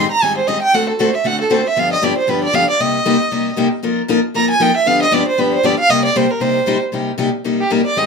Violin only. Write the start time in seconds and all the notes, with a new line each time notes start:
0.12 A#5
0.23 G#5
0.37 C5
0.47 D#5
0.62 G5
0.74 F#5
0.89 A4
1.00 C5
1.15 E5
1.27 F#5
1.42 A4
1.52 C5
1.67 E5
1.79 F5
1.93 D#5
2.04 D5
2.18 C5
2.30 B4
2.44 D5
2.55 F5
2.70 D5
2.81 D#5
4.36 A#5
4.50 G#5
4.62 G5
4.77 E5
4.87 F5
5.03 D#5
5.14 D5
5.28 C5
5.40 B4
5.54 C5
5.66 D5
5.79 F5
5.90 D#5
6.05 D5
6.17 C5
6.31 A#4
6.41 C5
7.60 G4
7.72 A#4
7.86 D5
7.98 D#5